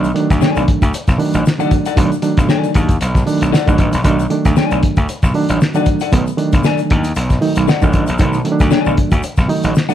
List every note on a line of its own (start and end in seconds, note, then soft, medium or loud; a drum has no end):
0.00 0.11 B1 loud
0.00 shaker medium
0.05 closed hi-hat soft
0.14 0.82 D#3 loud
0.14 0.82 F#3 medium
0.14 0.82 A3 medium
0.14 0.82 D4 loud
0.14 closed hi-hat medium
0.30 0.40 D2 medium
0.30 kick loud
0.30 snare soft
0.30 closed hi-hat medium
0.30 shaker medium
0.41 0.62 D#4 medium
0.41 0.62 A4 medium
0.41 0.62 D5 medium
0.41 0.63 G#5 medium
0.41 muted slap bass stroke soft
0.41 snare loud
0.41 shaker medium
0.56 0.66 B1 medium
0.56 closed hi-hat soft
0.56 shaker medium
0.68 kick loud
0.68 closed hi-hat medium
0.82 0.92 D2 medium
0.82 kick medium
0.82 closed hi-hat medium
0.82 shaker medium
0.94 muted slap bass stroke medium
0.94 closed hi-hat loud
0.94 shaker medium
1.07 1.17 B1 medium
1.07 kick medium
1.07 snare soft
1.07 closed hi-hat soft
1.07 shaker medium
1.18 1.43 D#3 loud
1.18 1.44 F#3 medium
1.18 1.44 A3 medium
1.18 1.44 D4 loud
1.18 open hi-hat medium
1.33 1.43 A1 medium
1.33 closed hi-hat medium
1.33 shaker medium
1.46 snare loud
1.46 shaker medium
1.58 1.83 D#3 medium
1.58 1.84 F#3 medium
1.58 1.84 A3 medium
1.58 1.84 D4 loud
1.58 1.72 D#4 medium
1.58 1.72 A4 medium
1.58 1.72 D5 medium
1.58 1.72 F#5 medium
1.58 closed hi-hat soft
1.58 shaker medium
1.71 kick medium
1.71 closed hi-hat medium
1.71 shaker medium
1.85 1.96 D#4 medium
1.85 1.96 A4 medium
1.85 1.96 D5 medium
1.85 1.95 F#5 medium
1.85 closed hi-hat medium
1.85 shaker medium
1.96 2.09 B1 loud
1.96 2.14 D#3 loud
1.96 2.14 F#3 medium
1.96 2.14 A3 medium
1.96 2.15 D4 loud
1.96 kick loud
1.96 closed hi-hat loud
1.96 shaker medium
2.12 closed hi-hat soft
2.12 shaker medium
2.22 2.89 D#3 medium
2.22 2.89 F#3 medium
2.22 2.90 A3 medium
2.22 2.90 D4 loud
2.22 closed hi-hat medium
2.22 shaker medium
2.37 2.47 B1 medium
2.37 kick loud
2.37 snare soft
2.37 closed hi-hat medium
2.37 shaker medium
2.49 2.70 D#4 medium
2.49 2.70 A4 medium
2.49 2.70 D5 medium
2.49 2.70 G#5 medium
2.49 snare loud
2.49 shaker medium
2.64 closed hi-hat soft
2.64 shaker medium
2.74 2.96 D#2 loud
2.74 kick medium
2.74 closed hi-hat medium
2.74 shaker medium
2.89 kick loud
2.89 closed hi-hat medium
2.89 shaker medium
3.01 3.22 B1 loud
3.01 closed hi-hat medium
3.01 shaker medium
3.15 kick medium
3.15 snare soft
3.15 closed hi-hat soft
3.15 shaker medium
3.26 3.51 D#3 loud
3.26 3.51 F#3 medium
3.26 3.51 A3 medium
3.26 3.52 D4 loud
3.26 open hi-hat medium
3.26 shaker medium
3.41 3.51 B1 medium
3.41 closed hi-hat soft
3.41 shaker medium
3.52 3.67 D#4 medium
3.52 3.67 A4 medium
3.52 3.68 D5 medium
3.52 3.68 F#5 medium
3.52 snare loud
3.52 shaker medium
3.66 3.77 A1 medium
3.66 3.91 D#3 loud
3.66 3.91 F#3 medium
3.66 3.92 A3 medium
3.66 3.92 D4 loud
3.66 kick loud
3.66 closed hi-hat soft
3.66 shaker medium
3.78 3.91 A1 loud
3.78 kick medium
3.78 closed hi-hat medium
3.78 shaker medium
3.93 4.03 A#1 medium
3.93 closed hi-hat medium
3.93 shaker medium
4.04 4.26 B1 loud
4.04 4.22 D#3 medium
4.04 4.22 F#3 medium
4.04 4.22 A3 medium
4.04 4.22 D4 loud
4.04 kick loud
4.04 closed hi-hat loud
4.04 shaker medium
4.19 closed hi-hat soft
4.19 shaker medium
4.30 4.97 D#3 medium
4.30 4.97 F#3 medium
4.30 4.97 A3 medium
4.30 4.98 D4 loud
4.30 closed hi-hat medium
4.45 4.55 D2 medium
4.45 kick loud
4.45 snare soft
4.45 closed hi-hat medium
4.45 shaker medium
4.56 4.77 D#4 medium
4.56 4.78 A4 medium
4.56 4.78 D5 medium
4.56 4.78 G#5 medium
4.56 muted slap bass stroke medium
4.56 snare loud
4.56 shaker medium
4.71 4.81 B1 medium
4.71 closed hi-hat soft
4.71 shaker medium
4.83 kick medium
4.83 closed hi-hat medium
4.97 5.07 D2 medium
4.97 kick medium
4.97 closed hi-hat medium
4.97 shaker medium
5.09 muted slap bass stroke soft
5.09 closed hi-hat medium
5.09 shaker medium
5.22 5.32 B1 medium
5.22 kick medium
5.22 snare soft
5.22 closed hi-hat soft
5.22 shaker medium
5.34 5.59 D#3 medium
5.34 5.59 F#3 medium
5.34 5.59 A3 medium
5.34 5.59 D4 loud
5.34 open hi-hat medium
5.49 5.59 A1 loud
5.49 closed hi-hat medium
5.49 shaker medium
5.61 snare loud
5.61 shaker medium
5.74 5.99 D#3 medium
5.74 5.99 F#3 medium
5.74 5.99 A3 medium
5.74 5.99 D4 loud
5.74 5.87 D#4 medium
5.74 5.87 A4 medium
5.74 5.87 D5 medium
5.74 5.87 F#5 medium
5.74 closed hi-hat soft
5.74 shaker medium
5.86 kick medium
5.86 closed hi-hat medium
5.86 shaker medium
6.00 6.11 D#4 soft
6.00 6.11 A4 medium
6.00 6.11 D5 medium
6.00 6.10 F#5 medium
6.00 closed hi-hat medium
6.00 shaker medium
6.12 6.24 B1 loud
6.12 6.29 D#3 medium
6.12 6.30 F#3 medium
6.12 6.30 A3 medium
6.12 6.30 B3 loud
6.12 kick loud
6.12 closed hi-hat loud
6.12 shaker medium
6.27 closed hi-hat soft
6.27 shaker medium
6.37 7.04 D#3 loud
6.37 7.04 F#3 medium
6.37 7.05 A3 medium
6.37 7.05 D4 loud
6.37 closed hi-hat medium
6.53 6.62 B1 medium
6.53 kick loud
6.53 snare soft
6.53 closed hi-hat medium
6.53 shaker medium
6.64 6.79 D#4 medium
6.64 6.79 A4 medium
6.64 6.79 D5 medium
6.64 6.80 G#5 medium
6.64 snare loud
6.64 shaker medium
6.78 closed hi-hat soft
6.78 shaker soft
6.90 7.12 D#2 medium
6.90 kick medium
6.90 closed hi-hat medium
7.04 closed hi-hat medium
7.04 shaker medium
7.15 7.37 B1 loud
7.15 closed hi-hat medium
7.15 shaker medium
7.30 kick medium
7.30 snare soft
7.30 closed hi-hat soft
7.30 shaker medium
7.41 7.66 D#3 loud
7.41 7.66 F#3 medium
7.41 7.66 A3 medium
7.41 7.67 D#4 loud
7.41 open hi-hat medium
7.55 7.66 B1 medium
7.55 closed hi-hat medium
7.55 shaker medium
7.68 7.82 D#4 medium
7.68 7.83 A4 medium
7.68 7.83 D5 medium
7.68 7.83 F#5 loud
7.68 snare loud
7.68 shaker medium
7.81 7.92 A1 medium
7.81 8.06 D#3 loud
7.81 8.06 F#3 medium
7.81 8.06 A3 medium
7.81 8.07 D4 loud
7.81 kick medium
7.81 closed hi-hat soft
7.81 shaker medium
7.93 8.06 A1 loud
7.93 kick medium
7.93 closed hi-hat medium
7.93 shaker medium
8.07 8.18 A#1 medium
8.07 closed hi-hat medium
8.07 shaker medium
8.18 8.41 B1 loud
8.18 8.37 D#3 loud
8.18 8.37 F#3 medium
8.18 8.37 A3 medium
8.18 8.37 D#4 loud
8.18 kick loud
8.18 closed hi-hat loud
8.18 shaker medium
8.33 closed hi-hat soft
8.33 shaker medium
8.45 9.12 D#3 medium
8.45 9.12 F#3 medium
8.45 9.12 A3 loud
8.45 8.53 C#4 medium
8.45 closed hi-hat medium
8.52 9.15 D4 loud
8.60 8.70 D2 medium
8.60 kick loud
8.60 snare soft
8.60 closed hi-hat medium
8.60 shaker medium
8.71 8.92 D#4 medium
8.71 8.92 A4 medium
8.71 8.92 D5 medium
8.71 8.93 G#5 medium
8.71 muted slap bass stroke soft
8.71 snare loud
8.71 shaker medium
8.85 8.95 B1 medium
8.85 shaker medium
8.97 kick medium
8.97 closed hi-hat medium
9.11 9.21 D2 medium
9.11 kick loud
9.11 closed hi-hat medium
9.11 shaker medium
9.23 muted slap bass stroke medium
9.23 closed hi-hat medium
9.23 shaker medium
9.37 9.47 B1 medium
9.37 kick medium
9.37 snare soft
9.37 closed hi-hat soft
9.37 shaker medium
9.48 9.73 D#3 loud
9.48 9.74 F#3 medium
9.48 9.74 A3 medium
9.48 9.74 D#4 loud
9.48 open hi-hat medium
9.63 9.73 A1 medium
9.63 closed hi-hat medium
9.63 shaker medium
9.75 snare loud
9.75 shaker medium
9.89 9.94 D#3 medium
9.89 9.94 F#3 medium
9.89 9.94 A3 medium
9.89 9.94 D4 loud
9.89 9.94 D#4 medium
9.89 9.94 A4 medium
9.89 9.94 D5 medium
9.89 9.94 F#5 medium
9.89 closed hi-hat soft
9.89 shaker medium